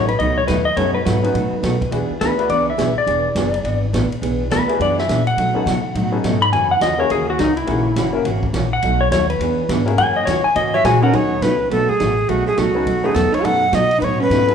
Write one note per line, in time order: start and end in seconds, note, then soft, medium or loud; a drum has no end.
0.00 0.19 A1 loud
0.08 0.20 B4 medium
0.08 ride medium
0.19 0.48 C#2 medium
0.19 0.40 B2 medium
0.19 0.40 F#3 medium
0.19 0.40 A3 medium
0.19 0.40 D#4 medium
0.19 0.40 F#4 medium
0.19 0.37 D#5 medium
0.19 ride medium
0.38 0.47 C#5 loud
0.48 0.76 D#2 loud
0.48 0.60 B2 medium
0.48 0.60 F#3 medium
0.48 0.60 A3 medium
0.48 0.60 D#4 medium
0.48 0.60 F#4 loud
0.48 0.66 B4 medium
0.48 snare medium
0.48 hi-hat pedal medium
0.48 ride medium
0.65 0.77 D#5 loud
0.76 1.05 F#2 medium
0.76 0.97 B2 medium
0.76 0.98 F#3 medium
0.76 0.98 A3 medium
0.76 0.93 B3 medium
0.76 0.93 C#4 medium
0.76 0.94 D#4 medium
0.76 0.98 D#4 medium
0.76 0.94 F#4 medium
0.76 0.98 F#4 medium
0.76 0.94 A4 medium
0.76 0.94 C#5 medium
0.76 ride medium
0.94 1.04 B4 medium
1.05 1.34 G#2 medium
1.05 1.17 B2 medium
1.05 1.17 F#3 medium
1.05 1.17 A3 medium
1.05 1.17 D#4 medium
1.05 1.17 F#4 medium
1.05 1.90 B4 loud
1.05 snare medium
1.05 hi-hat pedal medium
1.05 ride medium
1.23 1.33 B3 medium
1.23 1.34 C#4 medium
1.23 1.34 D#4 medium
1.23 1.34 F#4 medium
1.23 1.34 B4 medium
1.23 ride medium
1.34 1.51 A2 medium
1.34 1.54 B2 medium
1.34 1.54 F#3 medium
1.34 1.54 A3 medium
1.34 1.54 D#4 medium
1.34 1.55 F#4 medium
1.34 ride medium
1.52 muted upright bass stroke soft
1.63 1.75 B2 medium
1.63 1.91 B2 loud
1.63 1.75 F#3 medium
1.63 1.75 A3 medium
1.63 1.75 D#4 medium
1.63 1.75 F#4 medium
1.63 snare medium
1.63 hi-hat pedal medium
1.63 ride medium
1.81 kick medium
1.81 ride medium
1.91 2.09 E2 medium
1.91 2.12 E3 medium
1.91 2.08 B3 medium
1.91 2.12 B3 medium
1.91 2.08 D4 medium
1.91 2.13 D4 medium
1.91 2.08 E4 medium
1.91 2.09 F#4 medium
1.91 2.09 G#4 medium
1.91 2.13 G#4 medium
1.91 ride medium
2.10 muted upright bass stroke soft
2.21 2.49 D2 medium
2.21 2.33 E3 medium
2.21 2.33 B3 medium
2.21 2.33 D4 medium
2.21 2.33 G#4 medium
2.21 2.49 B4 loud
2.21 snare medium
2.21 hi-hat pedal medium
2.21 ride medium
2.38 2.49 B3 medium
2.38 2.49 D4 medium
2.38 2.49 E4 medium
2.38 2.49 F#4 medium
2.38 2.50 B4 medium
2.38 ride medium
2.49 2.78 C#2 medium
2.49 2.70 E3 medium
2.49 2.70 B3 medium
2.49 2.70 D4 medium
2.49 2.70 G#4 medium
2.49 2.67 D5 medium
2.49 ride medium
2.70 2.97 E5 medium
2.77 2.95 B1 loud
2.77 2.89 E3 medium
2.77 2.90 B3 medium
2.77 2.90 D4 medium
2.77 2.90 G#4 medium
2.77 snare medium
2.77 hi-hat pedal medium
2.77 ride medium
2.96 3.81 D5 loud
2.96 muted upright bass stroke soft
3.06 3.35 E1 medium
3.06 3.27 E3 medium
3.06 3.27 B3 medium
3.06 3.27 D4 medium
3.06 3.27 G#4 medium
3.06 ride medium
3.35 3.64 F#1 medium
3.35 3.47 E3 medium
3.35 3.48 B3 medium
3.35 3.48 D4 medium
3.35 3.48 G#4 medium
3.35 snare medium
3.35 hi-hat pedal medium
3.35 ride medium
3.54 ride medium
3.63 3.93 G#1 medium
3.63 3.84 E3 medium
3.63 3.84 B3 medium
3.63 3.85 D4 medium
3.63 3.85 G#4 medium
3.63 ride medium
3.93 4.10 A1 medium
3.93 4.05 E3 medium
3.93 4.05 B3 medium
3.93 4.05 D4 medium
3.93 4.05 G#4 medium
3.93 snare medium
3.93 hi-hat pedal medium
3.93 ride medium
4.12 muted upright bass stroke soft
4.12 ride soft
4.22 4.50 B1 medium
4.22 4.42 E3 medium
4.22 4.42 B3 medium
4.22 4.42 D4 medium
4.22 4.43 G#4 medium
4.22 ride medium
4.50 4.79 D2 loud
4.50 4.62 E3 medium
4.50 4.62 B3 medium
4.50 4.62 D4 medium
4.50 4.63 G#4 medium
4.50 4.80 B4 loud
4.50 snare medium
4.50 hi-hat pedal medium
4.50 ride medium
4.68 5.06 B3 medium
4.68 5.06 D4 medium
4.68 5.06 E4 medium
4.68 5.07 F#4 medium
4.68 5.07 G#4 medium
4.68 ride medium
4.80 5.08 F#2 medium
4.80 5.00 E3 medium
4.80 5.00 B3 medium
4.80 5.00 D4 medium
4.80 5.01 G#4 medium
4.80 4.98 D5 loud
4.80 ride medium
4.99 5.27 E5 medium
4.99 snare medium
5.08 5.37 A#2 medium
5.08 5.20 E3 medium
5.08 5.20 B3 medium
5.08 5.20 D4 medium
5.08 5.20 G#4 medium
5.08 snare medium
5.08 hi-hat pedal medium
5.08 ride medium
5.27 6.11 F#5 loud
5.27 ride soft
5.37 5.54 B2 medium
5.37 5.58 B2 medium
5.37 5.58 F#3 medium
5.37 5.58 A3 medium
5.37 5.58 D#4 medium
5.37 5.58 F#4 medium
5.37 ride medium
5.54 5.65 B3 medium
5.54 5.65 C#4 medium
5.54 5.65 D#4 medium
5.54 5.66 F#4 medium
5.54 5.66 A4 medium
5.54 muted upright bass stroke soft
5.66 5.77 B2 medium
5.66 5.94 C#3 loud
5.66 5.78 F#3 medium
5.66 5.78 A3 medium
5.66 5.78 D#4 medium
5.66 5.78 F#4 medium
5.66 snare medium
5.66 hi-hat pedal medium
5.66 ride medium
5.95 6.23 A2 medium
5.95 6.15 B2 medium
5.95 6.15 F#3 medium
5.95 6.16 A3 medium
5.95 6.16 D#4 medium
5.95 6.16 F#4 medium
5.95 ride medium
6.12 6.50 B3 medium
6.12 6.50 C#4 medium
6.12 6.50 D#4 medium
6.12 6.51 F#4 medium
6.12 6.51 A4 medium
6.24 6.52 G#2 medium
6.24 6.35 B2 medium
6.24 6.35 F#3 medium
6.24 6.36 A3 medium
6.24 6.36 D#4 medium
6.24 6.36 F#4 medium
6.24 snare medium
6.24 hi-hat pedal medium
6.24 ride medium
6.42 6.52 B5 loud
6.42 ride medium
6.53 6.81 F#2 medium
6.53 6.73 C#3 medium
6.53 6.73 E3 medium
6.53 6.73 A#3 medium
6.53 6.73 C#4 medium
6.53 6.74 F#4 medium
6.53 6.70 G#5 medium
6.53 ride medium
6.71 6.82 F#5 medium
6.81 7.09 E2 medium
6.81 6.93 C#3 medium
6.81 6.93 E3 medium
6.81 6.93 A#3 medium
6.81 6.94 C#4 medium
6.81 6.94 F#4 medium
6.81 6.99 D#5 medium
6.81 snare medium
6.81 hi-hat pedal medium
6.81 ride medium
6.98 7.36 A#3 medium
6.98 7.37 C#4 medium
6.98 7.37 E4 medium
6.98 7.37 F#4 medium
6.98 7.37 G#4 medium
6.98 7.10 C#5 medium
7.10 7.38 D#2 medium
7.10 7.30 C#3 medium
7.10 7.31 E3 medium
7.10 7.31 A#3 medium
7.10 7.31 C#4 medium
7.10 7.31 F#4 medium
7.10 7.28 G#4 loud
7.10 ride medium
7.30 7.40 F#4 loud
7.39 7.67 C#2 loud
7.39 7.50 C#3 medium
7.39 7.50 E3 medium
7.39 7.50 A#3 medium
7.39 7.51 C#4 medium
7.39 7.56 D#4 medium
7.39 7.51 F#4 loud
7.39 snare medium
7.39 hi-hat pedal medium
7.39 ride medium
7.57 8.13 E4 loud
7.57 ride medium
7.66 7.95 A#1 medium
7.66 7.87 C#3 medium
7.66 7.88 E3 medium
7.66 7.83 A#3 medium
7.66 7.88 A#3 medium
7.66 7.84 C#4 medium
7.66 7.88 C#4 medium
7.66 7.84 E4 medium
7.66 7.88 F#4 medium
7.66 7.84 F#4 medium
7.66 7.84 G#4 medium
7.66 ride medium
7.96 8.24 F#1 medium
7.96 8.08 C#3 medium
7.96 8.08 E3 medium
7.96 8.08 A#3 medium
7.96 8.08 C#4 medium
7.96 8.08 F#4 medium
7.96 snare medium
7.96 hi-hat pedal medium
7.96 ride medium
8.13 8.24 A#3 medium
8.13 8.24 C#4 medium
8.13 8.24 E4 medium
8.13 8.24 F#4 medium
8.13 8.24 A#4 medium
8.25 8.53 G#1 medium
8.25 8.45 C#3 medium
8.25 8.45 E3 medium
8.25 8.45 A#3 medium
8.25 8.45 C#4 medium
8.25 8.46 F#4 medium
8.25 ride medium
8.43 kick medium
8.53 8.82 A#1 loud
8.53 8.65 C#3 medium
8.53 8.65 E3 medium
8.53 8.65 A#3 medium
8.53 8.66 C#4 medium
8.53 8.66 F#4 medium
8.53 snare medium
8.53 hi-hat pedal medium
8.53 ride medium
8.73 9.01 F#5 loud
8.82 9.11 B1 medium
8.82 9.03 B2 medium
8.82 9.03 F#3 medium
8.82 9.03 A3 medium
8.82 9.03 D#4 medium
8.82 9.03 F#4 medium
8.82 ride medium
9.01 9.11 C#5 medium
9.11 9.39 D#2 loud
9.11 9.23 B2 medium
9.11 9.23 F#3 medium
9.11 9.24 A3 medium
9.11 9.24 D#4 medium
9.11 9.24 F#4 medium
9.11 9.29 C#5 loud
9.11 snare medium
9.11 hi-hat pedal medium
9.11 ride medium
9.30 9.86 B4 loud
9.30 ride medium
9.39 9.68 E2 medium
9.39 9.61 E3 medium
9.39 9.61 B3 medium
9.39 9.61 D4 medium
9.39 9.62 G#4 medium
9.39 ride medium
9.69 9.96 G#2 loud
9.69 9.81 E3 medium
9.69 9.81 B3 medium
9.69 9.81 D4 medium
9.69 9.82 G#4 medium
9.69 snare medium
9.69 hi-hat pedal medium
9.69 ride medium
9.85 10.24 A#3 medium
9.85 10.24 C#4 medium
9.85 10.24 E4 medium
9.85 10.25 F#4 medium
9.85 10.25 G#4 medium
9.85 ride medium
9.97 10.26 F#2 medium
9.97 10.18 C#3 medium
9.97 10.18 E3 medium
9.97 10.19 A#3 medium
9.97 10.18 C#4 medium
9.97 10.19 F#4 medium
9.97 10.16 G#5 loud
9.97 ride medium
10.16 10.27 D#5 loud
10.25 10.44 E2 medium
10.25 10.39 C#3 medium
10.25 10.39 E3 medium
10.25 10.39 A#3 medium
10.25 10.39 C#4 medium
10.25 10.39 F#4 medium
10.25 10.44 C#5 medium
10.25 snare medium
10.25 hi-hat pedal medium
10.25 ride medium
10.44 10.55 G#5 loud
10.44 muted upright bass stroke soft
10.55 10.84 G#2 medium
10.55 10.76 C#3 medium
10.55 10.76 E3 medium
10.55 10.76 A#3 medium
10.55 10.76 C#4 medium
10.55 10.76 F#4 medium
10.55 10.73 D#5 loud
10.55 ride medium
10.74 10.85 F#3 medium
10.74 10.85 C#5 medium
10.74 10.87 E5 medium
10.84 11.12 A#2 loud
10.84 10.96 C#3 medium
10.84 10.96 E3 medium
10.84 11.03 G#3 medium
10.84 10.96 A#3 medium
10.84 10.96 C#4 medium
10.84 11.04 F#4 medium
10.84 10.96 F#4 medium
10.84 11.02 G#5 loud
10.84 snare medium
10.84 hi-hat pedal medium
10.84 ride medium
11.01 11.39 B3 medium
11.01 11.40 C#4 medium
11.01 11.13 C#4 medium
11.01 11.40 D#4 medium
11.01 11.40 F#4 medium
11.01 11.40 A4 medium
11.01 11.16 A#4 medium
11.01 11.14 F#5 loud
11.13 11.40 D#2 medium
11.13 11.33 B2 medium
11.13 11.34 F#3 medium
11.13 11.34 A3 medium
11.13 11.43 D#4 medium
11.13 11.34 D#4 medium
11.13 11.34 F#4 medium
11.13 11.44 C#5 medium
11.13 ride medium
11.41 11.70 C#2 medium
11.41 11.54 B2 medium
11.41 11.54 F#3 medium
11.41 11.54 A3 medium
11.41 11.71 C#4 medium
11.41 11.54 D#4 medium
11.41 11.54 F#4 medium
11.41 11.71 B4 medium
11.41 snare medium
11.41 hi-hat pedal medium
11.41 ride medium
11.70 11.87 B1 medium
11.70 11.91 B2 medium
11.70 11.91 F#3 medium
11.70 11.91 A3 medium
11.70 11.91 B3 medium
11.70 11.92 D#4 medium
11.70 11.91 F#4 medium
11.70 11.91 A4 loud
11.70 ride medium
11.89 12.28 A3 medium
11.89 12.31 G#4 loud
11.89 muted upright bass stroke soft
12.00 12.28 A1 medium
12.00 12.11 B2 medium
12.00 12.11 F#3 medium
12.00 12.11 A3 medium
12.00 12.11 D#4 medium
12.00 12.11 F#4 medium
12.00 snare medium
12.00 hi-hat pedal medium
12.00 ride medium
12.28 12.46 B1 medium
12.28 12.48 B2 medium
12.28 12.49 F#3 medium
12.28 12.49 A3 medium
12.28 12.46 A3 medium
12.28 12.49 D#4 medium
12.28 12.49 F#4 medium
12.28 12.47 F#4 medium
12.28 ride medium
12.47 12.56 A3 medium
12.47 12.61 G#4 medium
12.47 muted upright bass stroke soft
12.57 12.85 C#2 medium
12.57 12.69 B2 medium
12.57 12.69 F#3 medium
12.57 13.03 A3 medium
12.57 12.69 A3 medium
12.57 12.69 D#4 medium
12.57 12.69 F#4 medium
12.57 13.07 F#4 medium
12.57 snare medium
12.57 hi-hat pedal medium
12.57 ride medium
12.75 12.85 B3 medium
12.75 12.85 C#4 medium
12.75 12.85 D#4 medium
12.75 12.86 F#4 medium
12.75 12.86 A4 medium
12.86 13.14 D#2 medium
12.86 13.07 B2 medium
12.86 13.07 F#3 medium
12.86 13.07 A3 medium
12.86 13.07 D#4 medium
12.86 13.07 F#4 medium
12.86 ride medium
13.03 13.14 A3 medium
13.03 13.14 B3 medium
13.03 13.14 C#4 medium
13.03 13.14 D#4 medium
13.03 13.14 F#4 medium
13.03 13.16 G#4 medium
13.03 13.14 A4 medium
13.14 13.32 E2 loud
13.14 13.26 B2 medium
13.14 13.27 F#3 medium
13.14 13.27 A3 medium
13.14 13.33 B3 medium
13.14 13.27 D#4 medium
13.14 13.27 F#4 medium
13.14 13.36 A4 medium
13.14 snare medium
13.14 hi-hat pedal medium
13.14 ride medium
13.32 13.44 D#4 medium
13.32 13.46 C#5 medium
13.32 muted upright bass stroke soft
13.32 ride soft
13.43 13.72 F#2 medium
13.43 13.64 B2 medium
13.43 13.64 F#3 medium
13.43 13.64 A3 medium
13.43 13.60 B3 medium
13.43 13.60 C#4 medium
13.43 13.60 D#4 medium
13.43 13.64 D#4 medium
13.43 13.64 F#4 medium
13.43 13.61 F#4 medium
13.43 13.73 A4 medium
13.43 13.61 A4 medium
13.43 13.76 F#5 loud
13.43 ride medium
13.72 13.84 B2 medium
13.72 14.01 B2 medium
13.72 13.84 F#3 medium
13.72 13.84 A3 medium
13.72 13.84 D#4 medium
13.72 14.01 F#4 medium
13.72 13.84 F#4 medium
13.72 14.00 D#5 medium
13.72 snare medium
13.72 hi-hat pedal medium
13.72 ride medium
13.91 ride medium
13.99 14.29 A2 medium
13.99 14.22 B2 medium
13.99 14.22 F#3 medium
13.99 14.01 D#4 medium
13.99 14.19 D#4 medium
13.99 14.06 B4 medium
13.99 ride medium
14.03 14.22 A3 medium
14.03 14.22 D#4 medium
14.03 14.22 F#4 medium
14.03 14.21 C#5 loud
14.20 14.55 C#4 medium
14.20 14.55 B4 loud
14.30 14.55 G#2 medium
14.30 14.42 B2 medium
14.30 14.42 F#3 medium
14.30 14.42 A3 medium
14.30 14.42 D#4 medium
14.30 14.42 F#4 medium
14.30 snare medium
14.30 hi-hat pedal medium
14.30 ride medium
14.47 14.55 B3 medium
14.47 14.55 C#4 medium
14.47 14.55 D#4 medium
14.47 14.55 F#4 medium
14.47 14.55 A4 medium
14.47 ride soft